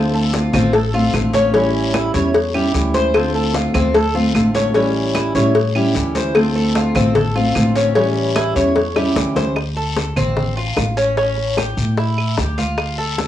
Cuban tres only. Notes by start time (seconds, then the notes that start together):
Already playing: C5
0.14 A4
0.34 F4
0.54 C4
0.74 A4
0.94 F4
1.34 C#4
1.54 C#4
1.94 E4
2.14 C#5
2.54 G4
2.94 C5
3.35 A4
3.55 F4
3.74 C4
3.94 A4
4.15 F4
4.55 C#4
4.75 C#4
5.15 E4
5.35 C#5
5.75 G4
6.16 C5
6.56 A4
6.76 F4
6.96 C4
7.15 A4
7.36 F4
7.76 C#4
7.96 C#4
8.36 E4
8.56 C#5
8.96 G4
9.36 C5
9.77 A4
10.17 C4
10.57 F4
10.97 C#4
11.17 C#4
11.58 G4
11.98 E4
12.38 G4
12.58 F4
12.98 A4